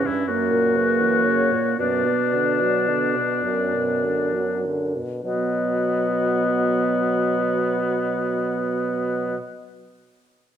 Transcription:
Already playing: C#4
0.04 G2 E4
0.27 F#2 A#3 F#4 A#4
0.51 A#2
0.76 C#3 B4
1.01 E3
1.24 C#3 C#5
1.52 A#2
1.78 F#2 B2 B3 D4 D5
2.06 B2
2.34 D3
2.62 F#3
2.90 D3
3.17 B2
3.44 F#2
3.74 B2
4.04 D3
4.34 F#3
4.66 D3
4.96 B2
5.24 B2 F#3 B3 D#5

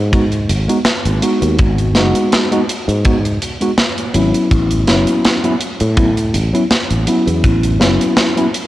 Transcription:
Already playing: G#2
0.12 G#3 B3 D#4 F#4, kick, closed hi-hat
0.32 closed hi-hat
0.49 G#1, closed hi-hat
0.68 G#3 B3 D#4 F#4, closed hi-hat
0.85 snare, closed hi-hat
1.05 G#1, closed hi-hat
1.22 G#3 B3 D#4 F#4, closed hi-hat
1.42 D#2, closed hi-hat
1.59 G#1, kick, closed hi-hat
1.78 closed hi-hat
1.95 F#1 G#3 B3 D#4 F#4, snare, closed hi-hat
2.15 closed hi-hat
2.32 snare, closed hi-hat
2.51 G#3 B3 D#4 F#4, closed hi-hat
2.69 closed hi-hat
2.88 G#2, closed hi-hat
3.04 G#3 B3 D#4 F#4, kick, closed hi-hat
3.25 closed hi-hat
3.42 closed hi-hat
3.61 G#3 B3 D#4 F#4, closed hi-hat
3.78 snare, closed hi-hat
3.98 closed hi-hat
4.14 G#1 F#3 B3 C#4 E4, closed hi-hat
4.34 closed hi-hat
4.51 A1, kick, closed hi-hat
4.71 closed hi-hat
4.87 F#1 F#3 B3 C#4 E4, snare, closed hi-hat
5.07 closed hi-hat
5.24 snare, closed hi-hat
5.43 F#3 B3 C#4 E4, closed hi-hat
5.60 closed hi-hat
5.80 A2, closed hi-hat
5.97 F#3 B3 C#4 E4, kick, closed hi-hat
6.17 closed hi-hat
6.34 A1, closed hi-hat
6.53 F#3 B3 C#4 E4, closed hi-hat
6.71 snare, closed hi-hat
6.91 A1, closed hi-hat
7.07 F#3 B3 C#4 E4, closed hi-hat
7.27 E2, closed hi-hat
7.44 A1, kick, closed hi-hat
7.63 closed hi-hat
7.80 F#1 F#3 B3 C#4 E4, snare, closed hi-hat
8.01 closed hi-hat
8.17 snare, closed hi-hat
8.36 F#3 B3 C#4 E4, closed hi-hat
8.54 closed hi-hat

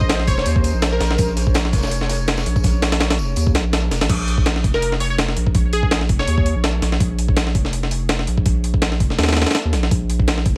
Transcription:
Already playing: A#1 C#4 G#4 A#4 C5 D#5
0.01 kick
0.09 snare, open hi-hat
0.20 snare
0.27 F1 C#5, kick, open hi-hat, tambourine
0.38 snare
0.46 D#2, open hi-hat, tambourine
0.56 kick
0.64 open hi-hat, tambourine
0.74 A#1
0.82 snare, open hi-hat, tambourine
0.92 A#4, closed hi-hat
1.00 A#1, snare, open hi-hat, tambourine
1.11 snare
1.18 A#1 C#5, kick, open hi-hat, tambourine
1.28 snare
1.36 snare, open hi-hat, tambourine
1.47 kick
1.54 snare, open hi-hat, tambourine
1.65 snare
1.73 F1, kick, snare, open hi-hat, tambourine
1.78 snare, tambourine
1.83 snare, tambourine
1.87 snare, tambourine
1.91 open hi-hat, tambourine
2.01 snare, closed hi-hat
2.09 snare, open hi-hat, tambourine
2.20 closed hi-hat
2.28 snare, open hi-hat, tambourine
2.37 snare, tambourine
2.46 A#1, closed hi-hat, open hi-hat
2.56 kick, tambourine
2.64 kick, snare, open hi-hat, tambourine
2.73 closed hi-hat
2.82 snare, open hi-hat, tambourine
2.92 snare, open hi-hat
3.00 snare, open hi-hat
3.10 snare, open hi-hat
3.18 F1, tambourine
3.36 D#2, open hi-hat, tambourine
3.47 kick
3.55 A#1, snare, open hi-hat, tambourine
3.73 snare, open hi-hat, tambourine
3.83 closed hi-hat
3.91 F1, snare, open hi-hat, tambourine
4.01 A#1, snare, open hi-hat
4.09 A#1, kick, open hi-hat, crash
4.28 open hi-hat
4.38 kick
4.46 snare, open hi-hat
4.56 snare
4.64 F1, kick, open hi-hat
4.74 A#4, snare
4.82 open hi-hat
4.92 snare
5.00 C#5, open hi-hat
5.10 C#5
5.19 snare, open hi-hat
5.29 snare
5.37 A#1, open hi-hat
5.47 kick
5.55 kick, open hi-hat
5.73 G#4, open hi-hat
5.83 kick
5.91 snare, open hi-hat
6.01 snare
6.09 F1, kick, open hi-hat
6.19 C#5, snare
6.27 D#2, open hi-hat
6.38 kick
6.46 open hi-hat
6.56 A#1
6.64 snare, open hi-hat
6.82 A#1, snare, open hi-hat
6.92 snare
7.00 A#1, kick, open hi-hat
7.19 open hi-hat
7.29 kick
7.37 snare, open hi-hat
7.47 snare
7.55 F1, kick, open hi-hat
7.65 snare
7.73 open hi-hat
7.83 snare
7.91 open hi-hat
8.09 snare, open hi-hat
8.19 snare
8.27 A#1, open hi-hat
8.38 kick
8.46 kick, open hi-hat
8.64 open hi-hat
8.74 kick
8.82 snare, open hi-hat
8.92 snare
9.00 F1, kick, open hi-hat
9.10 snare
9.18 D#2, snare, open hi-hat
9.23 snare, open hi-hat
9.29 snare, open hi-hat
9.33 snare, open hi-hat
9.37 snare, open hi-hat
9.42 snare, open hi-hat
9.46 snare, open hi-hat
9.51 snare, open hi-hat
9.55 snare, open hi-hat
9.65 D#2
9.73 A#1, snare, open hi-hat
9.83 snare
9.91 A#1, kick, open hi-hat
10.10 open hi-hat
10.19 kick
10.28 snare, open hi-hat
10.38 snare
10.46 F1, kick, open hi-hat

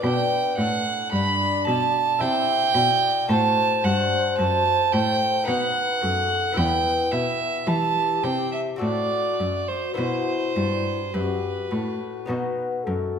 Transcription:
Already playing: B4
0.04 B2 D4 D5 G5
0.58 A2 F#5
1.12 G2 D5 B5
1.67 B2 A5
2.19 C3 E4 C5 E5 G5
2.75 B2 D5
3.29 A2 F#4 C5 A5
3.84 G2 F#5
4.38 F#2 A5
4.92 A2 G5
5.44 B3 D#4 B4
5.48 B2 F#5
6.01 F#2 A4
6.52 B3 E4 B4
6.57 E2 B4 G5
7.12 B2 E5
7.65 E3 G4 A5
8.23 C3 G5
8.52 E5
8.76 C4 F#4 A4
8.80 A2 D5
9.40 F#2
9.68 C5
9.94 B3 E4 F#4 C5
9.98 B2
10.56 G2
11.13 F#2 G4 B4
11.70 A2 F#4
12.26 B2 B3 D#4 F#4 B4
12.30 B2
12.84 F#2 A4

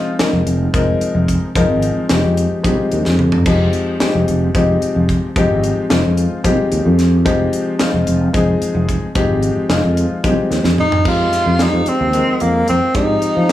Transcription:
Already playing: F3 G#3 C4 D#4 F4
0.19 F3 G#3 C4 D#4 A#4, muted fretless electric bass stroke, snare, closed hi-hat
0.33 F1
0.46 F1, closed hi-hat
0.74 F1 F3 G#3 C4 D#4 A#4, kick, closed hi-hat
1.01 muted fretless electric bass stroke, closed hi-hat
1.15 F1
1.28 kick, closed hi-hat
1.55 F1 F3 G#3 C4 D#4 A#4, kick, closed hi-hat
1.69 G#1
1.82 closed hi-hat
1.97 muted fretless electric bass stroke
2.09 F1 F3 G#3 C4 D#4 G4, snare, closed hi-hat
2.24 F2
2.37 closed hi-hat
2.52 muted fretless electric bass stroke
2.63 C2 F3 G#3 C4 D#4 G4, kick, closed hi-hat
2.79 muted fretless electric bass stroke
2.92 D#2, closed hi-hat
3.05 F2, snare
3.19 mid tom
3.32 floor tom
3.46 F1 F3 G#3 C4 D#4 G4, kick, closed hi-hat, crash
3.73 closed hi-hat
4.00 F3 G#3 C4 D#4 G4, muted fretless electric bass stroke, snare, closed hi-hat
4.15 F1
4.28 F1, closed hi-hat
4.54 F1 F3 G#3 C4 D#4 G4, kick, closed hi-hat
4.82 muted fretless electric bass stroke, closed hi-hat
4.96 F1
5.09 kick, closed hi-hat
5.36 F1 F3 G#3 C4 D#4 G4, kick, closed hi-hat
5.50 G#1
5.64 closed hi-hat
5.77 muted fretless electric bass stroke
5.90 F1 F3 G#3 C4 D#4 F4, snare, closed hi-hat
6.05 F2
6.17 closed hi-hat
6.32 muted fretless electric bass stroke
6.44 C2 F3 G#3 C4 D#4 G4, kick, closed hi-hat
6.59 muted fretless electric bass stroke
6.72 D#2, closed hi-hat
6.85 F2
6.99 snare, closed hi-hat
7.25 F1 F3 G#3 C4 D#4 G4, kick, closed hi-hat
7.53 closed hi-hat
7.79 F3 G#3 C4 D#4 F4, muted fretless electric bass stroke, snare, closed hi-hat
7.94 F1
8.07 F1, closed hi-hat
8.33 F1 F3 G#3 C4 D#4 G#4, kick, closed hi-hat
8.61 muted fretless electric bass stroke, closed hi-hat
8.75 F1
8.89 kick, closed hi-hat
9.15 F1 F3 G#3 C4 D#4 G4, kick, closed hi-hat
9.29 G#1
9.43 closed hi-hat
9.56 muted fretless electric bass stroke
9.69 F1 F3 G#3 C4 D#4 F4, snare, closed hi-hat
9.83 F2
9.97 closed hi-hat
10.10 muted fretless electric bass stroke
10.23 C2 F3 G#3 C4 D#4 G4, kick, closed hi-hat
10.37 muted fretless electric bass stroke
10.51 D#2, snare, closed hi-hat
10.64 F2, snare
10.78 D#4, mid tom
10.92 floor tom
11.05 F2 F3 G#3 C4 D#4 F4 G4, kick, crash
11.33 snare, closed hi-hat
11.46 F2
11.59 F3 G#3 C4 D#4 G4, snare, closed hi-hat
11.73 F2
11.86 C4, muted fretless electric bass stroke, closed hi-hat
12.00 D#2
12.13 F3 G#3 C4 D#4 A#4, closed hi-hat
12.40 F2 A#3, closed hi-hat
12.68 F2 C4, closed hi-hat
12.95 G#2 F3 G#3 C4 D#4 G4, kick, closed hi-hat
13.22 closed hi-hat
13.36 F3

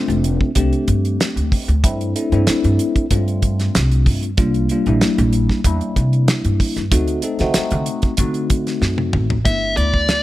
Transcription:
Already playing: A3 C4 D4 F4
0.08 F1, closed hi-hat
0.24 closed hi-hat
0.41 kick
0.55 C2 A3 C4 D4 G4, kick, closed hi-hat
0.73 closed hi-hat
0.88 G2, kick, closed hi-hat
1.05 closed hi-hat
1.20 snare, closed hi-hat
1.36 D2, closed hi-hat
1.52 kick, open hi-hat
1.68 D2, closed hi-hat
1.84 G2 A3 C4 D4 E4, kick, closed hi-hat
2.01 closed hi-hat
2.16 A3 C4 D4 E4, closed hi-hat
2.32 G2 A3 C4 D4 E4, closed hi-hat
2.47 muted upright bass stroke, snare, closed hi-hat
2.64 G2, closed hi-hat
2.79 closed hi-hat
2.96 muted upright bass stroke, kick, closed hi-hat
3.11 G2 A3 C4 D4 F4, kick, closed hi-hat
3.28 closed hi-hat
3.42 kick, closed hi-hat
3.59 snare, closed hi-hat
3.75 C2, snare, closed hi-hat
3.92 closed hi-hat
4.06 G2, kick, open hi-hat
4.23 closed hi-hat
4.37 C2 G3 A#3 D4 F4, kick, closed hi-hat
4.54 closed hi-hat
4.69 G3 A#3 D4 F4, closed hi-hat
4.86 A#1 G3 A#3 D4 E4, closed hi-hat
5.01 snare, closed hi-hat
5.18 A#1, closed hi-hat
5.33 closed hi-hat
5.49 kick, snare
5.64 E2 G3 A#3 D4 E4, kick, closed hi-hat
5.81 closed hi-hat
5.96 C3, kick, closed hi-hat
6.13 closed hi-hat
6.28 snare, closed hi-hat
6.44 G2, closed hi-hat
6.60 kick, open hi-hat
6.76 G2, snare, closed hi-hat
6.91 D2 A3 C4 D#4 F#4, kick, closed hi-hat
7.08 closed hi-hat
7.22 A3 C4 D#4 A4, closed hi-hat
7.39 D3 A3 C4 D#4 F#4, snare, closed hi-hat
7.54 muted upright bass stroke, snare, closed hi-hat
7.71 D3, closed hi-hat
7.86 closed hi-hat
8.02 muted upright bass stroke, kick, closed hi-hat
8.17 D3 A3 C4 D#4 F#4, kick, closed hi-hat
8.34 closed hi-hat
8.50 kick, closed hi-hat
8.67 snare, closed hi-hat
8.81 F#2, snare
8.98 high tom
9.13 A1, mid tom
9.30 floor tom
9.45 G1 A3 B3 D4 E4 E5, kick, closed hi-hat
9.77 D2 A3 B3 D4 E4 D5, closed hi-hat
9.94 kick
10.09 snare, closed hi-hat

